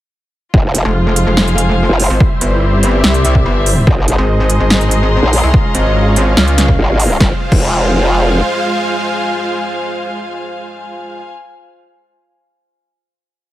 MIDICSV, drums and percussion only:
0, 0, Header, 1, 2, 480
1, 0, Start_track
1, 0, Key_signature, -4, "minor"
1, 0, Tempo, 416667
1, 620, Time_signature, 4, 2, 24, 8
1, 15575, End_track
2, 0, Start_track
2, 0, Title_t, "Drums"
2, 620, Note_on_c, 9, 36, 120
2, 735, Note_off_c, 9, 36, 0
2, 859, Note_on_c, 9, 42, 83
2, 975, Note_off_c, 9, 42, 0
2, 1339, Note_on_c, 9, 42, 80
2, 1455, Note_off_c, 9, 42, 0
2, 1580, Note_on_c, 9, 38, 114
2, 1695, Note_off_c, 9, 38, 0
2, 1701, Note_on_c, 9, 42, 36
2, 1816, Note_off_c, 9, 42, 0
2, 1820, Note_on_c, 9, 42, 85
2, 1935, Note_off_c, 9, 42, 0
2, 2299, Note_on_c, 9, 46, 100
2, 2415, Note_off_c, 9, 46, 0
2, 2539, Note_on_c, 9, 36, 127
2, 2654, Note_off_c, 9, 36, 0
2, 2779, Note_on_c, 9, 42, 86
2, 2894, Note_off_c, 9, 42, 0
2, 3259, Note_on_c, 9, 42, 80
2, 3374, Note_off_c, 9, 42, 0
2, 3499, Note_on_c, 9, 38, 123
2, 3614, Note_off_c, 9, 38, 0
2, 3620, Note_on_c, 9, 42, 38
2, 3735, Note_off_c, 9, 42, 0
2, 3739, Note_on_c, 9, 42, 84
2, 3854, Note_off_c, 9, 42, 0
2, 3860, Note_on_c, 9, 36, 66
2, 3976, Note_off_c, 9, 36, 0
2, 4219, Note_on_c, 9, 46, 98
2, 4334, Note_off_c, 9, 46, 0
2, 4459, Note_on_c, 9, 36, 127
2, 4575, Note_off_c, 9, 36, 0
2, 4699, Note_on_c, 9, 42, 86
2, 4815, Note_off_c, 9, 42, 0
2, 5179, Note_on_c, 9, 42, 79
2, 5294, Note_off_c, 9, 42, 0
2, 5419, Note_on_c, 9, 38, 124
2, 5534, Note_off_c, 9, 38, 0
2, 5540, Note_on_c, 9, 42, 37
2, 5656, Note_off_c, 9, 42, 0
2, 5659, Note_on_c, 9, 42, 81
2, 5774, Note_off_c, 9, 42, 0
2, 6140, Note_on_c, 9, 46, 93
2, 6255, Note_off_c, 9, 46, 0
2, 6379, Note_on_c, 9, 36, 127
2, 6495, Note_off_c, 9, 36, 0
2, 6620, Note_on_c, 9, 42, 80
2, 6735, Note_off_c, 9, 42, 0
2, 7100, Note_on_c, 9, 42, 76
2, 7215, Note_off_c, 9, 42, 0
2, 7339, Note_on_c, 9, 38, 123
2, 7454, Note_off_c, 9, 38, 0
2, 7461, Note_on_c, 9, 42, 36
2, 7576, Note_off_c, 9, 42, 0
2, 7580, Note_on_c, 9, 38, 65
2, 7580, Note_on_c, 9, 42, 78
2, 7695, Note_off_c, 9, 38, 0
2, 7695, Note_off_c, 9, 42, 0
2, 7701, Note_on_c, 9, 36, 65
2, 7816, Note_off_c, 9, 36, 0
2, 8059, Note_on_c, 9, 46, 87
2, 8175, Note_off_c, 9, 46, 0
2, 8300, Note_on_c, 9, 36, 120
2, 8300, Note_on_c, 9, 38, 84
2, 8415, Note_off_c, 9, 36, 0
2, 8415, Note_off_c, 9, 38, 0
2, 8661, Note_on_c, 9, 36, 110
2, 8661, Note_on_c, 9, 49, 87
2, 8776, Note_off_c, 9, 36, 0
2, 8776, Note_off_c, 9, 49, 0
2, 15575, End_track
0, 0, End_of_file